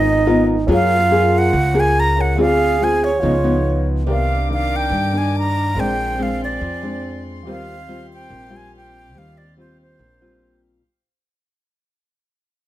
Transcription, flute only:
0, 0, Header, 1, 2, 480
1, 0, Start_track
1, 0, Key_signature, -3, "major"
1, 0, Tempo, 422833
1, 781, Time_signature, 4, 2, 24, 8
1, 14388, End_track
2, 0, Start_track
2, 0, Title_t, "Flute"
2, 0, Program_c, 0, 73
2, 0, Note_on_c, 0, 75, 93
2, 528, Note_off_c, 0, 75, 0
2, 833, Note_on_c, 0, 77, 98
2, 1570, Note_on_c, 0, 78, 95
2, 1587, Note_off_c, 0, 77, 0
2, 2042, Note_on_c, 0, 80, 90
2, 2059, Note_off_c, 0, 78, 0
2, 2268, Note_on_c, 0, 82, 99
2, 2285, Note_off_c, 0, 80, 0
2, 2507, Note_on_c, 0, 78, 87
2, 2524, Note_off_c, 0, 82, 0
2, 2724, Note_off_c, 0, 78, 0
2, 2744, Note_on_c, 0, 77, 96
2, 3221, Note_on_c, 0, 80, 93
2, 3238, Note_off_c, 0, 77, 0
2, 3450, Note_on_c, 0, 73, 82
2, 3467, Note_off_c, 0, 80, 0
2, 4397, Note_off_c, 0, 73, 0
2, 4666, Note_on_c, 0, 77, 85
2, 5093, Note_off_c, 0, 77, 0
2, 5147, Note_on_c, 0, 77, 84
2, 5404, Note_on_c, 0, 79, 93
2, 5421, Note_off_c, 0, 77, 0
2, 5878, Note_on_c, 0, 80, 86
2, 5895, Note_off_c, 0, 79, 0
2, 6091, Note_off_c, 0, 80, 0
2, 6114, Note_on_c, 0, 82, 92
2, 6583, Note_on_c, 0, 79, 98
2, 6600, Note_off_c, 0, 82, 0
2, 7069, Note_on_c, 0, 77, 87
2, 7086, Note_off_c, 0, 79, 0
2, 7286, Note_off_c, 0, 77, 0
2, 7312, Note_on_c, 0, 74, 86
2, 8202, Note_off_c, 0, 74, 0
2, 8513, Note_on_c, 0, 77, 90
2, 9163, Note_off_c, 0, 77, 0
2, 9237, Note_on_c, 0, 79, 89
2, 9723, Note_on_c, 0, 80, 89
2, 9740, Note_off_c, 0, 79, 0
2, 9933, Note_off_c, 0, 80, 0
2, 9951, Note_on_c, 0, 79, 85
2, 10424, Note_on_c, 0, 77, 85
2, 10441, Note_off_c, 0, 79, 0
2, 10644, Note_on_c, 0, 74, 76
2, 10661, Note_off_c, 0, 77, 0
2, 10873, Note_off_c, 0, 74, 0
2, 10890, Note_on_c, 0, 72, 74
2, 11100, Note_off_c, 0, 72, 0
2, 11149, Note_on_c, 0, 72, 71
2, 12039, Note_off_c, 0, 72, 0
2, 14388, End_track
0, 0, End_of_file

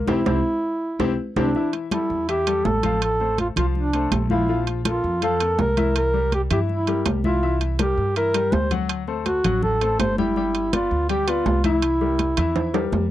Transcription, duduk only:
0, 0, Header, 1, 2, 480
1, 0, Start_track
1, 0, Tempo, 367197
1, 99, Time_signature, 4, 2, 24, 8
1, 17136, End_track
2, 0, Start_track
2, 0, Title_t, "Duduk"
2, 0, Program_c, 0, 69
2, 88, Note_on_c, 0, 64, 97
2, 1485, Note_off_c, 0, 64, 0
2, 1789, Note_on_c, 0, 62, 83
2, 2233, Note_off_c, 0, 62, 0
2, 2515, Note_on_c, 0, 64, 82
2, 2957, Note_off_c, 0, 64, 0
2, 2998, Note_on_c, 0, 67, 91
2, 3483, Note_on_c, 0, 69, 86
2, 3503, Note_off_c, 0, 67, 0
2, 3956, Note_off_c, 0, 69, 0
2, 3962, Note_on_c, 0, 69, 91
2, 4402, Note_off_c, 0, 69, 0
2, 4441, Note_on_c, 0, 65, 83
2, 4546, Note_off_c, 0, 65, 0
2, 4682, Note_on_c, 0, 65, 77
2, 4787, Note_off_c, 0, 65, 0
2, 4926, Note_on_c, 0, 62, 82
2, 5365, Note_off_c, 0, 62, 0
2, 5645, Note_on_c, 0, 64, 91
2, 6085, Note_off_c, 0, 64, 0
2, 6366, Note_on_c, 0, 65, 84
2, 6805, Note_off_c, 0, 65, 0
2, 6840, Note_on_c, 0, 69, 96
2, 7282, Note_off_c, 0, 69, 0
2, 7325, Note_on_c, 0, 70, 91
2, 7765, Note_off_c, 0, 70, 0
2, 7807, Note_on_c, 0, 70, 102
2, 8245, Note_off_c, 0, 70, 0
2, 8292, Note_on_c, 0, 67, 93
2, 8395, Note_off_c, 0, 67, 0
2, 8522, Note_on_c, 0, 67, 86
2, 8627, Note_off_c, 0, 67, 0
2, 8763, Note_on_c, 0, 64, 89
2, 9203, Note_off_c, 0, 64, 0
2, 9473, Note_on_c, 0, 65, 91
2, 9917, Note_off_c, 0, 65, 0
2, 10190, Note_on_c, 0, 67, 97
2, 10635, Note_off_c, 0, 67, 0
2, 10679, Note_on_c, 0, 70, 106
2, 11157, Note_on_c, 0, 72, 92
2, 11176, Note_off_c, 0, 70, 0
2, 11392, Note_off_c, 0, 72, 0
2, 12113, Note_on_c, 0, 66, 90
2, 12555, Note_off_c, 0, 66, 0
2, 12590, Note_on_c, 0, 69, 101
2, 13033, Note_off_c, 0, 69, 0
2, 13067, Note_on_c, 0, 72, 97
2, 13289, Note_off_c, 0, 72, 0
2, 13310, Note_on_c, 0, 64, 93
2, 13976, Note_off_c, 0, 64, 0
2, 14037, Note_on_c, 0, 65, 95
2, 14476, Note_off_c, 0, 65, 0
2, 14508, Note_on_c, 0, 67, 91
2, 14753, Note_on_c, 0, 65, 102
2, 14773, Note_off_c, 0, 67, 0
2, 15221, Note_off_c, 0, 65, 0
2, 15229, Note_on_c, 0, 64, 90
2, 16849, Note_off_c, 0, 64, 0
2, 17136, End_track
0, 0, End_of_file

